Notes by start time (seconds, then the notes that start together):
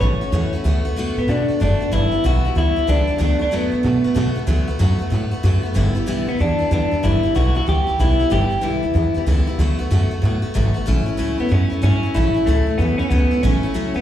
0.00 A1 E3 A3 C#4 F#4 C#5
0.21 A3 C#4 F#4, muted upright bass stroke
0.32 E2 A2 E3 A3 C#4 F#4
0.53 A3 C#4 F#4, muted upright bass stroke
0.64 D2 D3 A3 B3 F#4
0.85 A3 B3 F#4
0.96 F#2 D3 A3 B3 F#4
1.17 A2 A3 B3 F#4
1.28 B2 D3 A3 B3 D4 F#4
1.48 A3 B3 F#4, muted upright bass stroke
1.60 F#1 D3 A3 B3 D4 F#4
1.80 A3 B3 F#4, muted upright bass stroke
1.92 G1 G2 D3 E3 G3 B3 E4
2.12 E3 G3 B3 E4, muted upright bass stroke
2.24 B1 G2 D3 E3 G3 B3 E4 F#4
2.45 E3 G3 B3 E4
2.55 D2 E3 G3 B3 E4
2.76 E3 G3 B3 E4, muted upright bass stroke
2.87 C#2 G2 D3 E3 G3 B3 D4 E4
3.07 E3 G3 B3 E4, muted upright bass stroke
3.18 D2 D3 F#3 A3 B3 D4 F#4
3.39 A3 B3 D4 F#4, muted upright bass stroke
3.51 F#2 D3 F#3 A3 B3 F#4
3.72 A2 A3 B3 F#4
3.83 B2 F#3 A3 B3 F#4
4.04 A3 B3 F#4, muted upright bass stroke
4.14 B2 D3 F#3 A3 B3 F#4
4.36 A3 B3 F#4, muted upright bass stroke
4.47 D2 D3 F#3 A3 B3 F#4
4.68 A3 B3 F#4, muted upright bass stroke
4.79 F#2 D3 F#3 A3 B3 F#4
4.99 A3 B3 F#4, muted upright bass stroke
5.10 A2 F#3 A3 B3 F#4
5.31 A3 B3 F#4, muted upright bass stroke
5.43 F#2 D3 F#3 A3 B3 F#4
5.63 A3 B3 F#4, muted upright bass stroke
5.74 G1 G2 D3 E3 G3 B3 E4
5.95 E3 G3 B3 E4, muted upright bass stroke
6.06 B1 G2 D3 E3 G3 B3 E4
6.27 D2 E3 G3 B3 E4
6.39 E2 E3 G3 B3 D4 E4
6.59 E3 G3 B3 E4, muted upright bass stroke
6.71 E2 G2 D3 E3 G3 B3 D4 E4
6.91 E3 G3 B3 E4, muted upright bass stroke
7.03 G1 G2 D3 E3 G3 B3 E4
7.23 E3 G3 B3 E4, muted upright bass stroke
7.35 B1 G2 D3 E3 G3 B3 E4 F#4
7.55 E3 G3 B3 E4 F#4
7.66 D2 E3 G3 B3 E4 G4
7.87 E3 G3 B3 E4, muted upright bass stroke
7.99 B1 G2 D3 E3 G3 B3 E4
8.19 E3 G3 B3 E4, muted upright bass stroke
8.30 G1 G2 D3 E3 G3 B3 E4 G4
8.50 E3 G3 B3 E4, muted upright bass stroke
8.61 B1 G2 D3 E3 G3 B3 E4
8.82 D2 E3 G3 B3 E4
8.94 E2 E3 G3 B3 E4
9.14 E3 G3 B3 E4, muted upright bass stroke
9.26 C#2 G2 D3 E3 G3 B3 E4
9.47 E3 G3 B3 E4, muted upright bass stroke
9.58 D2 D3 F#3 A3 B3 F#4
9.79 A3 B3 F#4, muted upright bass stroke
9.91 F#2 D3 F#3 A3 B3 F#4
10.11 A3 B3 F#4, muted upright bass stroke
10.22 A2 F#3 A3 B3 F#4
10.42 A3 B3 F#4, muted upright bass stroke
10.54 G#1 D3 F#3 A3 B3 F#4
10.74 A3 B3 F#4, muted upright bass stroke
10.86 A1 A2 F#3 A3 C#4 E4
11.06 A3 C#4 E4, muted upright bass stroke
11.17 C#2 A2 F#3 A3 C#4 E4
11.38 A3 B3 C#4 E4
11.49 F#2 F#3 A3 C#4 E4
11.70 A3 C#4 E4, muted upright bass stroke
11.82 G2 A2 F#3 A3 C#4 E4
12.03 A3 C#4 E4, muted upright bass stroke
12.14 A1 A2 F#3 A3 C#4 E4
12.34 A3 C#4 E4, muted upright bass stroke
12.46 C#2 A2 F#3 A3 C#4 E4
12.67 A3 C#4 E4, muted upright bass stroke
12.78 E2 F#3 A3 B3 C#4 E4
12.98 C#4 E4, muted upright bass stroke
13.02 A3
13.09 C#2 A2 F#3 A3 B3 C#4 E4
13.31 A3 C#4 E4
13.43 A1 A2 F#3 A3 C#4 E4
13.63 A3 C#4 E4, muted upright bass stroke
13.74 C#2 A2 F#3 A3 C#4 E4
13.94 E2 A3 B3 C#4 E4